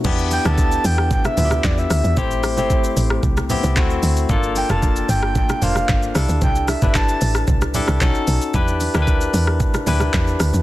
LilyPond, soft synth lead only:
\new Staff \with { instrumentName = "Soft synth lead" } { \time 4/4 \key e \phrygian \tempo 4 = 113 r8 g''16 a''8. g''8 g''16 e''8. d''16 e''8. | c''2 r2 | r8 g''16 a''8. g''8 g''8 f''4 r8 | g''8 e''8 a''4 r2 |
r1 | }